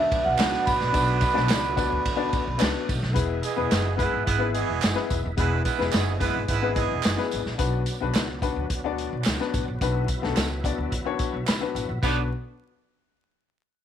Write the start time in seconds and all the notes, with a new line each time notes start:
Already playing: D2 B2 F#3 B3 D4 F#4 B4 D5 E5
0.12 kick, ride, tambourine
0.25 B1 F#5
0.38 C#2 B3 D4 F#4 B4 D5, snare, clap, ride, tambourine
0.53 snare
0.66 A1 B5, kick, ride, tambourine
0.80 A#1, snare
0.92 B1 A3 B3 D4 F#4 B4 D5, kick, ride, tambourine
1.21 kick, ride, tambourine
1.34 B1 B3 D4 F#4 B4 D5, snare
1.49 C#2, snare, clap, ride, tambourine
1.76 B3 D4 F#4 B4 D5, kick, ride, tambourine
1.92 D2
2.05 D2, kick, ride
2.16 B3 D4 F#4 B4 D5
2.33 kick, ride, tambourine
2.47 B1
2.58 C#2 B3 D4 F#4 B4 D5, snare, clap, ride, tambourine
2.89 B1, kick, ride, tambourine
3.03 B1, snare
3.13 E1 E3 G#3 B3 E4 G#4 B4, kick, closed hi-hat, tambourine
3.43 E3 G#3 B3 G#4, closed hi-hat, tambourine
3.56 E1 B3 E4 G#4 B4
3.71 F#1, snare, clap, closed hi-hat, tambourine
3.97 G#3 B3 E4 G#4 B4, kick, closed hi-hat, tambourine
4.13 G#1
4.25 G#1 G#3 B3 E4 B4, kick, closed hi-hat
4.38 B3 E4 G#4 B4
4.53 E3 G#3 B3 G#4, closed hi-hat, tambourine
4.70 E1
4.82 F#1, snare, clap, closed hi-hat, tambourine
4.95 B3 E4 G#4 B4, snare
5.10 E1, kick, closed hi-hat, tambourine
5.25 D#1
5.36 E1 G#3 B3 D4 E4 G#4 B4, kick, closed hi-hat, tambourine
5.64 G#3 B3 E4 B4, kick, closed hi-hat, tambourine
5.78 E1 B3 E4 G#4 B4, snare
5.92 F#1 E3 G#3 B3 G#4, snare, clap, closed hi-hat, tambourine
6.19 G#3 B3 E4 G#4 B4, kick, closed hi-hat, tambourine
6.36 G#1
6.48 G#1 G#3 B3 E4 B4, kick, closed hi-hat
6.62 B3 E4 G#4 B4
6.75 E3 G#3 B3 G#4, kick, closed hi-hat, tambourine
6.91 E1
7.03 F#1, snare, clap, closed hi-hat, tambourine
7.17 B3 E4 G#4 B4, snare
7.31 A1, closed hi-hat, tambourine
7.46 A#1, snare
7.58 B1 B2 F#3 B3 D4 F#4 B4, kick, closed hi-hat, tambourine
7.86 closed hi-hat, tambourine
8.01 B1 B3 D4 F#4 B4
8.15 snare, clap, closed hi-hat, tambourine
8.42 B3 D4 F#4 B4, kick, closed hi-hat, tambourine
8.56 D2
8.70 D2, kick, closed hi-hat
8.84 B3 D4 F#4 D5
8.98 closed hi-hat
9.13 B1
9.24 C#2, snare, clap, closed hi-hat, tambourine
9.40 B3 D4 F#4 B4, snare
9.54 A1, kick, closed hi-hat, tambourine
9.68 A#1
9.81 B1 B3 D4 E4 F#4 B4, kick, closed hi-hat, tambourine
10.08 kick, closed hi-hat, tambourine
10.22 B1 B3 D4 F#4 A4, snare
10.37 C#2, snare, clap, closed hi-hat, tambourine
10.64 B3 D4 F#4 D5, kick, closed hi-hat, tambourine
10.78 D2
10.92 D2, kick, closed hi-hat
11.05 B3 D4 F#4 C#5
11.19 kick, closed hi-hat, tambourine
11.33 B1
11.47 C#2 B5, snare, clap, closed hi-hat, tambourine
11.60 B3 D4 F#4 B4
11.75 A1 F#5, closed hi-hat, tambourine
11.89 A#1
12.02 B1 D3 F#3 B3 D4 F#4 B4, kick, crash, tambourine